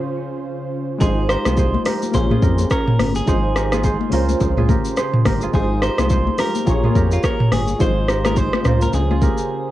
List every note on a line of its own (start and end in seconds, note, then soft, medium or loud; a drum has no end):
0.00 0.97 C#3 medium
0.00 0.97 C#4 medium
0.00 0.72 F4 medium
0.00 0.98 F4 medium
0.00 0.97 G#4 medium
0.00 0.31 A#4 medium
0.00 0.99 C5 medium
0.00 0.75 C#5 medium
0.98 1.37 G#1 loud
0.98 2.11 G#3 medium
0.98 2.11 D#4 medium
0.98 2.12 F4 medium
0.98 1.29 G#4 medium
0.98 1.36 G#4 medium
0.98 1.58 C5 medium
0.98 kick loud
0.98 low conga medium
0.98 shaker medium
1.03 2.13 C5 medium
1.29 1.52 G4 medium
1.29 1.86 A#4 medium
1.29 1.82 C5 loud
1.29 cross-stick loud
1.29 shaker medium
1.45 1.78 C2 loud
1.45 2.32 F4 medium
1.45 1.59 G#4 medium
1.45 cross-stick loud
1.45 high conga medium
1.45 shaker medium
1.57 1.93 G#4 medium
1.57 2.77 C5 medium
1.57 kick medium
1.57 shaker medium
1.74 high conga medium
1.86 2.37 G4 medium
1.86 2.43 A#4 medium
1.86 cross-stick loud
1.86 open hi-hat medium
1.86 low conga medium
1.86 shaker medium
2.02 high conga medium
2.02 shaker medium
2.12 2.37 A#1 loud
2.12 3.24 A#3 medium
2.12 3.25 F4 medium
2.12 3.26 G#4 medium
2.12 2.70 C5 loud
2.12 kick medium
2.12 low conga medium
2.12 shaker medium
2.17 3.26 C#4 medium
2.30 3.73 F4 medium
2.30 2.50 G#4 medium
2.30 mid tom medium
2.30 high conga medium
2.42 2.65 F2 loud
2.42 3.35 G4 medium
2.42 2.72 A#4 medium
2.42 kick loud
2.42 high conga medium
2.42 shaker medium
2.58 shaker medium
2.70 3.15 A#4 loud
2.70 3.56 A#4 medium
2.70 3.34 C#5 medium
2.70 kick medium
2.70 cross-stick medium
2.70 shaker medium
2.88 mid tom loud
2.99 3.22 G1 medium
2.99 cross-stick loud
2.99 open hi-hat medium
2.99 high conga medium
2.99 shaker medium
3.15 3.97 G#4 medium
3.15 shaker medium
3.26 3.97 G#1 loud
3.26 4.12 G#3 medium
3.26 4.12 D#4 medium
3.26 4.12 F4 medium
3.26 3.63 G#4 medium
3.26 3.84 C5 medium
3.26 4.13 C5 medium
3.26 kick loud
3.26 low conga medium
3.26 shaker medium
3.56 3.79 G4 medium
3.56 4.13 A#4 medium
3.56 cross-stick loud
3.56 shaker medium
3.72 4.13 F4 medium
3.72 3.85 G#4 medium
3.72 cross-stick loud
3.72 high conga medium
3.72 shaker medium
3.84 4.57 G#4 medium
3.84 4.97 C5 medium
3.84 kick medium
3.84 shaker medium
4.01 high conga medium
4.10 4.35 C#2 loud
4.10 5.50 C#3 medium
4.10 5.51 C#4 medium
4.10 5.51 F4 medium
4.10 4.58 F4 medium
4.10 4.69 A#4 medium
4.10 open hi-hat medium
4.10 low conga medium
4.10 shaker medium
4.15 5.52 C5 medium
4.29 high conga medium
4.29 shaker medium
4.40 4.76 C#2 loud
4.40 kick medium
4.40 low conga medium
4.40 shaker medium
4.57 5.43 F4 medium
4.57 4.76 G#4 medium
4.57 mid tom medium
4.57 high conga medium
4.69 5.05 G4 medium
4.69 5.26 A#4 medium
4.69 kick loud
4.69 high conga medium
4.69 shaker medium
4.85 shaker medium
4.97 5.33 G#4 medium
4.97 5.54 C5 medium
4.97 cross-stick medium
4.97 shaker medium
5.13 mid tom loud
5.25 5.48 G1 medium
5.25 5.49 G4 medium
5.25 5.82 A#4 medium
5.25 kick loud
5.25 cross-stick loud
5.25 open hi-hat medium
5.25 high conga medium
5.25 shaker medium
5.41 6.00 F4 medium
5.41 5.55 G#4 medium
5.41 shaker medium
5.51 5.89 G#1 loud
5.51 6.63 G#3 medium
5.51 6.64 D#4 medium
5.51 6.65 F4 medium
5.51 5.83 G#4 loud
5.51 5.89 G#4 medium
5.51 6.11 C5 medium
5.51 kick loud
5.51 low conga medium
5.51 shaker medium
5.56 6.66 C5 medium
5.82 6.05 G4 medium
5.82 6.39 A#4 medium
5.82 6.39 C5 loud
5.82 cross-stick loud
5.82 shaker medium
5.98 6.31 C2 medium
5.98 6.85 F4 medium
5.98 6.11 G#4 medium
5.98 cross-stick loud
5.98 high conga medium
5.98 shaker medium
6.10 6.46 G#4 medium
6.10 7.30 C5 medium
6.10 kick medium
6.10 shaker medium
6.27 high conga medium
6.38 6.90 G4 medium
6.38 6.95 A#4 medium
6.38 7.14 A#4 loud
6.38 cross-stick loud
6.38 open hi-hat medium
6.38 low conga medium
6.38 shaker medium
6.55 high conga medium
6.55 shaker medium
6.65 6.90 A#1 loud
6.65 7.77 A#3 medium
6.65 7.78 F4 medium
6.65 7.78 G#4 medium
6.65 kick medium
6.65 low conga medium
6.65 shaker medium
6.70 7.79 C#5 medium
6.83 8.26 F4 medium
6.83 7.03 G#4 medium
6.83 mid tom medium
6.83 high conga medium
6.95 7.18 F2 loud
6.95 7.88 G4 medium
6.95 7.25 A#4 medium
6.95 kick loud
6.95 high conga medium
6.95 shaker medium
7.11 7.25 F4 medium
7.11 shaker medium
7.23 7.53 A#4 loud
7.23 8.09 A#4 medium
7.23 7.87 C#5 medium
7.23 kick loud
7.23 cross-stick medium
7.23 shaker medium
7.40 mid tom loud
7.52 7.74 G1 medium
7.52 7.81 G#4 loud
7.52 cross-stick loud
7.52 open hi-hat medium
7.52 high conga medium
7.52 shaker soft
7.68 shaker medium
7.79 8.50 G#1 loud
7.79 8.65 G#3 medium
7.79 8.65 D#4 medium
7.79 8.65 F4 medium
7.79 8.16 G#4 medium
7.79 8.37 C5 medium
7.79 8.26 C5 loud
7.79 8.66 C5 medium
7.79 kick loud
7.79 low conga medium
7.79 shaker medium
8.09 8.32 G4 medium
8.09 8.65 A#4 medium
8.09 cross-stick loud
8.09 shaker medium
8.25 8.66 F4 medium
8.25 8.38 G#4 medium
8.25 8.38 A#4 medium
8.25 cross-stick loud
8.25 high conga medium
8.25 shaker medium
8.36 9.10 G#4 medium
8.36 9.56 C5 medium
8.36 8.82 C5 loud
8.36 kick medium
8.36 shaker medium
8.53 cross-stick loud
8.53 high conga medium
8.63 8.88 C#2 loud
8.63 9.71 C#3 medium
8.63 9.71 C#4 medium
8.63 9.71 F4 medium
8.63 9.22 A#4 medium
8.63 cross-stick medium
8.63 mid tom loud
8.63 low conga medium
8.63 shaker medium
8.67 9.11 F4 medium
8.67 9.71 C5 medium
8.82 8.94 A#4 medium
8.82 high conga medium
8.82 shaker medium
8.93 9.29 C#2 medium
8.93 9.71 G#4 medium
8.93 low conga medium
8.93 shaker medium
9.11 9.71 F4 medium
9.11 9.29 G#4 medium
9.11 high conga medium
9.22 9.71 G4 medium
9.22 9.71 A#4 medium
9.22 kick loud
9.22 high conga medium
9.22 shaker medium
9.38 shaker medium